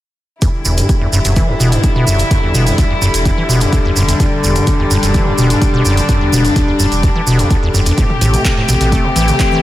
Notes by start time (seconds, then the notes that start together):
0.42 E2 D3 G3 E4, kick, closed hi-hat, maracas
0.65 E1 E2, maracas
0.77 G2, closed hi-hat, maracas
0.89 kick, closed hi-hat, maracas
1.01 E2
1.13 E1 F#2, maracas
1.25 E1 F#2, closed hi-hat, maracas
1.36 E3, kick, closed hi-hat, maracas
1.49 E2
1.60 E1 B2, maracas
1.72 G2, closed hi-hat, maracas
1.83 kick, closed hi-hat, maracas
1.96 B2
2.07 E1 F#2, maracas
2.19 E2, closed hi-hat, maracas
2.31 F#2, kick, closed hi-hat, maracas
2.43 E2
2.54 E1 B2, maracas
2.67 E2, closed hi-hat, maracas
2.78 D2, kick, closed hi-hat, maracas
2.90 E2
3.02 E1 F#2, maracas
3.14 E1, closed hi-hat, maracas
3.25 E2, kick, closed hi-hat, maracas
3.38 E3
3.49 E1 B2, maracas
3.61 E2, closed hi-hat, maracas
3.73 D2, kick, closed hi-hat, maracas
3.85 E2
3.96 E1 F#2, maracas
4.08 E2, closed hi-hat, maracas
4.20 E2 D4, kick, closed hi-hat, maracas
4.43 E1 E2, maracas
4.56 G2, closed hi-hat, maracas
4.67 kick, closed hi-hat, maracas
4.79 E2
4.91 E1 F#2, maracas
5.03 E1 F#2, closed hi-hat, maracas
5.14 E3, kick, closed hi-hat, maracas
5.27 E2
5.38 E1 B2, maracas
5.50 G2, closed hi-hat, maracas
5.62 kick, closed hi-hat, maracas
5.74 B2
5.85 E1 F#2, maracas
5.97 E2, closed hi-hat, maracas
6.09 F#2, kick, closed hi-hat, maracas
6.21 E2
6.32 E1 B2, maracas
6.45 E2, closed hi-hat, maracas
6.56 D2, kick, closed hi-hat, maracas
6.68 E2
6.80 E1 F#2, maracas
6.92 E1, closed hi-hat, maracas
7.03 E2, kick, closed hi-hat, maracas
7.15 E3
7.27 E1 B2, maracas
7.39 E2, closed hi-hat, maracas
7.50 D2, kick, closed hi-hat, maracas
7.63 E2
7.74 E1 F#2, maracas
7.86 E2, closed hi-hat, maracas
7.98 A2 C3 A3 G4, kick, closed hi-hat, maracas
8.10 mid tom
8.21 A1 A2, mid tom, open hi-hat, maracas
8.34 C3, closed hi-hat, mid tom, maracas
8.45 kick, clap, closed hi-hat, maracas
8.57 A2
8.69 A1 B2, open hi-hat, maracas
8.81 A1 B2, closed hi-hat, mid tom, maracas
8.92 A3, kick, closed hi-hat, maracas
9.04 A2
9.16 A1 E3, open hi-hat, maracas
9.28 C3, closed hi-hat, maracas
9.39 kick, clap, closed hi-hat, maracas
9.52 E3